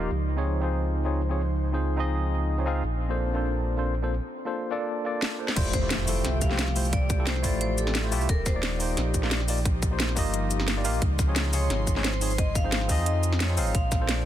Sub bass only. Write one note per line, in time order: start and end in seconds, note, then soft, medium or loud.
0.11 2.82 C#2 medium
2.84 4.20 A#1 medium
5.56 6.23 F1 loud
6.25 7.45 C2 medium
7.44 8.14 A1 medium
8.12 8.28 C2 loud
8.29 8.96 D#1 loud
8.97 10.18 A#1 medium
10.17 10.87 G1 medium
10.85 11.00 A#1 medium
11.02 11.69 C#2 loud
11.70 12.91 G#1 medium
12.89 13.59 F2 medium
13.58 13.73 G#1 medium
13.75 14.25 A#1 loud